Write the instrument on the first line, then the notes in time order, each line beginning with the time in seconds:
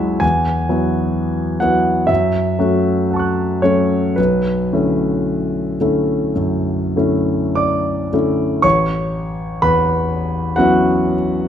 grand piano
Already playing: C#2 F#3 G#3 E4 F#4 E5 F#5
0.20 E2 G#5
0.69 F#3 B3 E4 F#4
1.60 F#3 B3 E4 F#4 F#5
2.07 F#2 E5
2.59 F#3 A3 C#4 F#4
3.11 F#5 A5
3.16 C#6 F#6
3.62 F#3 A3 C#4 F#4 C#5
4.16 B1 B4
4.73 D3 A3 C#4 E4
5.81 D3 A3 C#4 E4
6.36 F#2
6.96 D3 A3 C#4 E4
7.55 D5 D6
8.13 D3 A3 C#4 E4
8.62 A1 C#5 C#6
9.62 E2 B4 B5
10.56 F#3 B3 C#4 E4 F#4 F#5